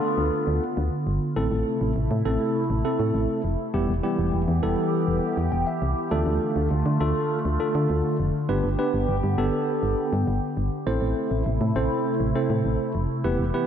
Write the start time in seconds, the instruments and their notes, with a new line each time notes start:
Already playing: analog synth pad D3 B3 F4, tine electric piano A3 D4 F4 A4
0.18 fm bass D2
0.47 fm bass D2
0.77 fm bass D2
1.07 fm bass G1
1.36 fm bass A1, analog synth pad C3 A3 E4, tine electric piano A3 C4 E4 A4
1.52 fm bass A1
1.81 fm bass A1
1.96 fm bass A1
2.11 fm bass A2
2.25 fm bass A1, tine electric piano A3 C4 E4 A4
2.70 fm bass A1
2.85 tine electric piano A3 C4 E4 A4
3.00 fm bass A2
3.14 fm bass A1
3.44 fm bass F1
3.74 fm bass E1, analog synth pad E3 B3 G4, tine electric piano G3 B3 E4 G4
3.89 fm bass E1
4.03 tine electric piano G3 B3 E4 G4
4.19 fm bass E1
4.33 fm bass E1
4.48 fm bass E2
4.63 fm bass E1, tine electric piano G3 B3 E4 A4
5.08 fm bass E1
5.37 fm bass E2
5.52 fm bass E1, tine electric piano G5
5.67 tine electric piano E5
5.82 fm bass C2
6.11 fm bass D2, analog synth pad D3 A3 F4, tine electric piano A3 D4 F4 A4
6.26 fm bass D2
6.56 fm bass D2
6.71 fm bass D2
6.86 fm bass D3
7.00 fm bass D2, tine electric piano A3 D4 F4 A4
7.45 fm bass D2
7.60 tine electric piano A3 D4 F4 A4
7.75 fm bass D3
7.90 fm bass D2
8.20 fm bass F1
8.49 fm bass G1, tine electric piano B3 D4 G4 B4, analog synth pad B3 G4
8.64 fm bass G1
8.79 tine electric piano B3 D4 G4 B4
8.94 fm bass G1
9.09 fm bass G1
9.23 fm bass G2
9.38 fm bass G1, tine electric piano B3 D4 G4 A4
9.83 fm bass G1
10.13 fm bass G2
10.27 fm bass G1
10.57 fm bass G1
10.87 fm bass A1, analog synth pad C3 A3 E4, tine electric piano C4 E4 A4 C5
11.01 fm bass A1
11.31 fm bass A1
11.46 fm bass A1
11.61 fm bass A2
11.76 fm bass A1, tine electric piano C4 E4 A4 C5
12.20 fm bass A1
12.35 tine electric piano C4 E4 A4 C5
12.50 fm bass A2
12.65 fm bass A1
12.95 fm bass F1
13.24 fm bass E1, analog synth pad E3 B3 G4, tine electric piano B3 E4 G4 B4
13.39 fm bass E1
13.54 tine electric piano B3 E4 G4 B4